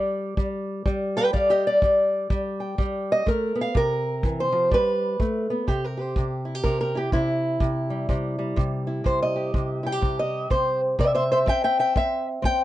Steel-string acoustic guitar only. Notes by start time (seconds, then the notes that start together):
Already playing: G3 D5
0.37 G3
0.86 G3
1.17 B4 G5
1.33 G3 D5 F5
1.50 G4 D#5
1.67 D5
1.83 G3
2.30 G3
2.60 G5
2.78 G3
3.12 D#5
3.26 A3 A#4
3.55 B3
3.61 F5
3.75 C3 A#4
4.24 E3
4.40 C5
4.52 F3
4.71 G3 B4
5.20 A3
5.50 B3
5.67 C3 G4
5.84 A#4
5.97 G4 C5
6.17 C3
6.45 E4
6.55 G4
6.64 C3 A#4
6.81 A#4
6.95 E4 G4
7.13 C3 E4
7.61 C3
7.90 G3
8.09 C3 G3
8.39 G3
8.56 C3
8.87 E4
9.04 C3 C5
9.22 D#5
9.36 G4
9.54 C3
9.83 E4 G5
9.92 G4
10.01 C3
10.19 D#5
10.50 C3 C5
10.99 C3 C5 E5
11.15 C5 E5
11.32 C5 E5
11.46 C4 E5 G5
11.64 E5 G5
11.79 E5 G5
11.96 C4 E5
12.42 C4 G5